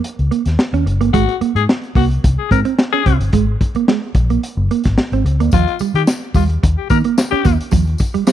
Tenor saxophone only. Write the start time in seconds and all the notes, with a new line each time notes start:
1.13 F#4
1.56 G#4
1.96 F#4
2.38 G#4
2.51 A#4
2.92 G#4
5.53 F4
5.95 G4
6.36 F4
6.77 G4
6.90 A#4
7.31 G4